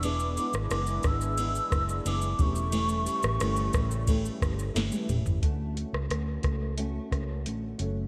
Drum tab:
RD |x-x-x-x-x-x-x-x-|x-x-x-x-x-x-x-x-|----------------|
HH |----------------|----------------|x-x-x-x-x-x-x-x-|
SH |xxxxxxxxxxxxxxxx|xxxxxxxxxxxxxxxx|----------------|
SD |---rr-r---r-----|---rr-r---r-o---|---rr-r---r-----|
T1 |----------------|-------------o--|----------------|
T2 |----------------|--------------o-|----------------|
FT |----------------|---------------o|----------------|
BD |------o---o---o-|------o-o-o-----|o-----o---o-----|